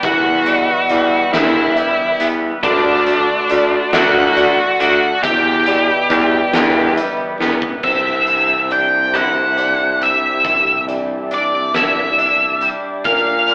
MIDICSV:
0, 0, Header, 1, 7, 480
1, 0, Start_track
1, 0, Tempo, 867052
1, 20, Time_signature, 6, 3, 24, 8
1, 7499, End_track
2, 0, Start_track
2, 0, Title_t, "Felt piano"
2, 0, Program_c, 0, 0
2, 23, Note_on_c, 0, 76, 70
2, 262, Note_off_c, 0, 76, 0
2, 262, Note_on_c, 0, 74, 64
2, 490, Note_off_c, 0, 74, 0
2, 498, Note_on_c, 0, 74, 74
2, 975, Note_on_c, 0, 76, 68
2, 979, Note_off_c, 0, 74, 0
2, 1457, Note_off_c, 0, 76, 0
2, 1460, Note_on_c, 0, 69, 77
2, 1939, Note_off_c, 0, 69, 0
2, 1939, Note_on_c, 0, 74, 71
2, 2179, Note_off_c, 0, 74, 0
2, 2179, Note_on_c, 0, 76, 80
2, 2418, Note_off_c, 0, 76, 0
2, 2419, Note_on_c, 0, 74, 73
2, 2896, Note_on_c, 0, 76, 82
2, 2898, Note_off_c, 0, 74, 0
2, 3137, Note_off_c, 0, 76, 0
2, 3140, Note_on_c, 0, 74, 74
2, 3367, Note_off_c, 0, 74, 0
2, 3376, Note_on_c, 0, 74, 78
2, 3857, Note_off_c, 0, 74, 0
2, 3858, Note_on_c, 0, 76, 68
2, 4337, Note_on_c, 0, 72, 60
2, 4338, Note_off_c, 0, 76, 0
2, 4818, Note_off_c, 0, 72, 0
2, 4822, Note_on_c, 0, 74, 53
2, 5061, Note_off_c, 0, 74, 0
2, 5064, Note_on_c, 0, 76, 54
2, 5302, Note_off_c, 0, 76, 0
2, 5305, Note_on_c, 0, 74, 54
2, 5781, Note_on_c, 0, 76, 61
2, 5783, Note_off_c, 0, 74, 0
2, 6021, Note_off_c, 0, 76, 0
2, 6023, Note_on_c, 0, 74, 57
2, 6258, Note_off_c, 0, 74, 0
2, 6266, Note_on_c, 0, 74, 61
2, 6743, Note_on_c, 0, 76, 59
2, 6745, Note_off_c, 0, 74, 0
2, 7224, Note_off_c, 0, 76, 0
2, 7224, Note_on_c, 0, 70, 66
2, 7499, Note_off_c, 0, 70, 0
2, 7499, End_track
3, 0, Start_track
3, 0, Title_t, "Lead electric guitar"
3, 0, Program_c, 1, 29
3, 21, Note_on_c, 1, 66, 90
3, 734, Note_off_c, 1, 66, 0
3, 736, Note_on_c, 1, 64, 76
3, 1255, Note_off_c, 1, 64, 0
3, 1457, Note_on_c, 1, 62, 86
3, 2178, Note_on_c, 1, 66, 84
3, 2199, Note_off_c, 1, 62, 0
3, 2654, Note_off_c, 1, 66, 0
3, 2661, Note_on_c, 1, 66, 80
3, 2893, Note_off_c, 1, 66, 0
3, 2895, Note_on_c, 1, 67, 88
3, 3834, Note_off_c, 1, 67, 0
3, 4340, Note_on_c, 1, 76, 69
3, 4828, Note_on_c, 1, 79, 77
3, 4834, Note_off_c, 1, 76, 0
3, 5069, Note_off_c, 1, 79, 0
3, 5072, Note_on_c, 1, 78, 70
3, 5552, Note_on_c, 1, 76, 60
3, 5560, Note_off_c, 1, 78, 0
3, 6005, Note_off_c, 1, 76, 0
3, 6278, Note_on_c, 1, 74, 61
3, 6508, Note_off_c, 1, 74, 0
3, 6510, Note_on_c, 1, 76, 60
3, 7026, Note_off_c, 1, 76, 0
3, 7225, Note_on_c, 1, 77, 79
3, 7499, Note_off_c, 1, 77, 0
3, 7499, End_track
4, 0, Start_track
4, 0, Title_t, "Ambient pad"
4, 0, Program_c, 2, 92
4, 0, Note_on_c, 2, 55, 80
4, 0, Note_on_c, 2, 71, 67
4, 0, Note_on_c, 2, 83, 83
4, 19, Note_on_c, 2, 76, 74
4, 1432, Note_off_c, 2, 83, 0
4, 1433, Note_off_c, 2, 55, 0
4, 1433, Note_off_c, 2, 71, 0
4, 1444, Note_off_c, 2, 76, 0
4, 1459, Note_on_c, 2, 69, 73
4, 1459, Note_on_c, 2, 81, 82
4, 1460, Note_on_c, 2, 74, 70
4, 1463, Note_on_c, 2, 66, 74
4, 2883, Note_off_c, 2, 69, 0
4, 2884, Note_off_c, 2, 74, 0
4, 2884, Note_off_c, 2, 81, 0
4, 2886, Note_off_c, 2, 66, 0
4, 2896, Note_on_c, 2, 76, 70
4, 2899, Note_on_c, 2, 71, 72
4, 2900, Note_on_c, 2, 67, 82
4, 2900, Note_on_c, 2, 83, 81
4, 4323, Note_off_c, 2, 76, 0
4, 4324, Note_off_c, 2, 71, 0
4, 4325, Note_off_c, 2, 67, 0
4, 4325, Note_off_c, 2, 83, 0
4, 4337, Note_on_c, 2, 67, 61
4, 4337, Note_on_c, 2, 72, 63
4, 4337, Note_on_c, 2, 76, 73
4, 4339, Note_on_c, 2, 62, 69
4, 5766, Note_off_c, 2, 72, 0
4, 5789, Note_on_c, 2, 74, 65
4, 7202, Note_off_c, 2, 67, 0
4, 7202, Note_off_c, 2, 76, 0
4, 7214, Note_off_c, 2, 74, 0
4, 7226, Note_on_c, 2, 65, 66
4, 7228, Note_on_c, 2, 74, 84
4, 7229, Note_on_c, 2, 70, 63
4, 7499, Note_off_c, 2, 62, 0
4, 7499, Note_off_c, 2, 65, 0
4, 7499, Note_off_c, 2, 70, 0
4, 7499, Note_off_c, 2, 74, 0
4, 7499, End_track
5, 0, Start_track
5, 0, Title_t, "Clean electric guitar"
5, 0, Program_c, 3, 27
5, 21, Note_on_c, 3, 40, 65
5, 259, Note_on_c, 3, 47, 61
5, 503, Note_on_c, 3, 55, 56
5, 741, Note_on_c, 3, 59, 59
5, 974, Note_off_c, 3, 55, 0
5, 981, Note_on_c, 3, 55, 60
5, 1213, Note_off_c, 3, 59, 0
5, 1220, Note_off_c, 3, 40, 0
5, 1220, Note_on_c, 3, 59, 61
5, 1458, Note_off_c, 3, 47, 0
5, 1459, Note_off_c, 3, 59, 0
5, 1460, Note_off_c, 3, 55, 0
5, 1460, Note_on_c, 3, 50, 72
5, 1700, Note_on_c, 3, 57, 65
5, 1934, Note_off_c, 3, 57, 0
5, 1940, Note_on_c, 3, 57, 61
5, 2179, Note_on_c, 3, 62, 67
5, 2411, Note_off_c, 3, 57, 0
5, 2418, Note_on_c, 3, 57, 57
5, 2655, Note_off_c, 3, 62, 0
5, 2658, Note_off_c, 3, 50, 0
5, 2662, Note_on_c, 3, 62, 68
5, 2898, Note_off_c, 3, 57, 0
5, 2900, Note_off_c, 3, 62, 0
5, 2902, Note_on_c, 3, 40, 67
5, 3144, Note_on_c, 3, 47, 68
5, 3381, Note_on_c, 3, 55, 68
5, 3621, Note_on_c, 3, 59, 70
5, 3854, Note_off_c, 3, 55, 0
5, 3861, Note_on_c, 3, 55, 61
5, 4093, Note_off_c, 3, 59, 0
5, 4100, Note_off_c, 3, 40, 0
5, 4100, Note_on_c, 3, 59, 68
5, 4339, Note_off_c, 3, 59, 0
5, 4340, Note_off_c, 3, 47, 0
5, 4340, Note_off_c, 3, 55, 0
5, 4342, Note_on_c, 3, 48, 52
5, 4583, Note_on_c, 3, 52, 46
5, 4824, Note_on_c, 3, 62, 47
5, 5062, Note_on_c, 3, 64, 57
5, 5298, Note_off_c, 3, 62, 0
5, 5301, Note_on_c, 3, 62, 43
5, 5542, Note_off_c, 3, 48, 0
5, 5542, Note_on_c, 3, 55, 52
5, 5781, Note_on_c, 3, 48, 53
5, 5783, Note_off_c, 3, 52, 0
5, 6024, Note_on_c, 3, 52, 47
5, 6261, Note_off_c, 3, 62, 0
5, 6263, Note_off_c, 3, 64, 0
5, 6263, Note_on_c, 3, 62, 50
5, 6504, Note_on_c, 3, 64, 55
5, 6741, Note_off_c, 3, 62, 0
5, 6743, Note_on_c, 3, 62, 47
5, 6744, Note_off_c, 3, 55, 0
5, 6984, Note_off_c, 3, 48, 0
5, 6987, Note_on_c, 3, 55, 56
5, 7225, Note_off_c, 3, 64, 0
5, 7226, Note_off_c, 3, 52, 0
5, 7226, Note_off_c, 3, 55, 0
5, 7229, Note_on_c, 3, 46, 57
5, 7470, Note_on_c, 3, 50, 52
5, 7499, Note_off_c, 3, 46, 0
5, 7499, Note_off_c, 3, 50, 0
5, 7499, Note_off_c, 3, 62, 0
5, 7499, End_track
6, 0, Start_track
6, 0, Title_t, "Baritone saxophone"
6, 0, Program_c, 4, 67
6, 20, Note_on_c, 4, 40, 84
6, 387, Note_off_c, 4, 40, 0
6, 499, Note_on_c, 4, 40, 86
6, 682, Note_off_c, 4, 40, 0
6, 735, Note_on_c, 4, 40, 93
6, 990, Note_off_c, 4, 40, 0
6, 1217, Note_on_c, 4, 40, 72
6, 1401, Note_off_c, 4, 40, 0
6, 1459, Note_on_c, 4, 38, 94
6, 1825, Note_off_c, 4, 38, 0
6, 1939, Note_on_c, 4, 38, 90
6, 2122, Note_off_c, 4, 38, 0
6, 2178, Note_on_c, 4, 38, 106
6, 2544, Note_off_c, 4, 38, 0
6, 2659, Note_on_c, 4, 38, 81
6, 2842, Note_off_c, 4, 38, 0
6, 2898, Note_on_c, 4, 40, 83
6, 3265, Note_off_c, 4, 40, 0
6, 3378, Note_on_c, 4, 40, 100
6, 3561, Note_off_c, 4, 40, 0
6, 3617, Note_on_c, 4, 40, 97
6, 3870, Note_off_c, 4, 40, 0
6, 4096, Note_on_c, 4, 40, 80
6, 4280, Note_off_c, 4, 40, 0
6, 4336, Note_on_c, 4, 36, 57
6, 7052, Note_off_c, 4, 36, 0
6, 7225, Note_on_c, 4, 46, 68
6, 7499, Note_off_c, 4, 46, 0
6, 7499, End_track
7, 0, Start_track
7, 0, Title_t, "Drums"
7, 16, Note_on_c, 9, 42, 69
7, 18, Note_on_c, 9, 36, 88
7, 71, Note_off_c, 9, 42, 0
7, 73, Note_off_c, 9, 36, 0
7, 255, Note_on_c, 9, 42, 55
7, 310, Note_off_c, 9, 42, 0
7, 495, Note_on_c, 9, 42, 57
7, 550, Note_off_c, 9, 42, 0
7, 739, Note_on_c, 9, 38, 91
7, 739, Note_on_c, 9, 42, 68
7, 795, Note_off_c, 9, 38, 0
7, 795, Note_off_c, 9, 42, 0
7, 978, Note_on_c, 9, 42, 58
7, 1034, Note_off_c, 9, 42, 0
7, 1218, Note_on_c, 9, 42, 60
7, 1273, Note_off_c, 9, 42, 0
7, 1458, Note_on_c, 9, 36, 91
7, 1458, Note_on_c, 9, 42, 79
7, 1513, Note_off_c, 9, 36, 0
7, 1513, Note_off_c, 9, 42, 0
7, 1697, Note_on_c, 9, 42, 61
7, 1753, Note_off_c, 9, 42, 0
7, 1935, Note_on_c, 9, 42, 65
7, 1990, Note_off_c, 9, 42, 0
7, 2176, Note_on_c, 9, 38, 86
7, 2176, Note_on_c, 9, 42, 84
7, 2232, Note_off_c, 9, 38, 0
7, 2232, Note_off_c, 9, 42, 0
7, 2417, Note_on_c, 9, 42, 58
7, 2472, Note_off_c, 9, 42, 0
7, 2658, Note_on_c, 9, 42, 61
7, 2714, Note_off_c, 9, 42, 0
7, 2898, Note_on_c, 9, 36, 87
7, 2899, Note_on_c, 9, 42, 79
7, 2954, Note_off_c, 9, 36, 0
7, 2955, Note_off_c, 9, 42, 0
7, 3135, Note_on_c, 9, 42, 61
7, 3190, Note_off_c, 9, 42, 0
7, 3378, Note_on_c, 9, 36, 71
7, 3380, Note_on_c, 9, 42, 62
7, 3433, Note_off_c, 9, 36, 0
7, 3435, Note_off_c, 9, 42, 0
7, 3618, Note_on_c, 9, 38, 98
7, 3618, Note_on_c, 9, 42, 80
7, 3673, Note_off_c, 9, 38, 0
7, 3673, Note_off_c, 9, 42, 0
7, 3861, Note_on_c, 9, 42, 58
7, 3916, Note_off_c, 9, 42, 0
7, 4099, Note_on_c, 9, 38, 58
7, 4155, Note_off_c, 9, 38, 0
7, 4218, Note_on_c, 9, 36, 77
7, 4274, Note_off_c, 9, 36, 0
7, 4335, Note_on_c, 9, 49, 58
7, 4338, Note_on_c, 9, 36, 73
7, 4390, Note_off_c, 9, 49, 0
7, 4394, Note_off_c, 9, 36, 0
7, 4577, Note_on_c, 9, 42, 43
7, 4632, Note_off_c, 9, 42, 0
7, 4821, Note_on_c, 9, 42, 44
7, 4876, Note_off_c, 9, 42, 0
7, 5059, Note_on_c, 9, 37, 67
7, 5059, Note_on_c, 9, 42, 57
7, 5114, Note_off_c, 9, 37, 0
7, 5114, Note_off_c, 9, 42, 0
7, 5302, Note_on_c, 9, 42, 49
7, 5357, Note_off_c, 9, 42, 0
7, 5545, Note_on_c, 9, 42, 44
7, 5600, Note_off_c, 9, 42, 0
7, 5783, Note_on_c, 9, 36, 73
7, 5784, Note_on_c, 9, 42, 62
7, 5838, Note_off_c, 9, 36, 0
7, 5839, Note_off_c, 9, 42, 0
7, 6026, Note_on_c, 9, 42, 45
7, 6081, Note_off_c, 9, 42, 0
7, 6261, Note_on_c, 9, 42, 51
7, 6317, Note_off_c, 9, 42, 0
7, 6502, Note_on_c, 9, 38, 72
7, 6502, Note_on_c, 9, 42, 57
7, 6557, Note_off_c, 9, 38, 0
7, 6557, Note_off_c, 9, 42, 0
7, 6746, Note_on_c, 9, 42, 42
7, 6801, Note_off_c, 9, 42, 0
7, 6982, Note_on_c, 9, 42, 41
7, 7037, Note_off_c, 9, 42, 0
7, 7221, Note_on_c, 9, 42, 54
7, 7225, Note_on_c, 9, 36, 79
7, 7277, Note_off_c, 9, 42, 0
7, 7280, Note_off_c, 9, 36, 0
7, 7461, Note_on_c, 9, 42, 44
7, 7499, Note_off_c, 9, 42, 0
7, 7499, End_track
0, 0, End_of_file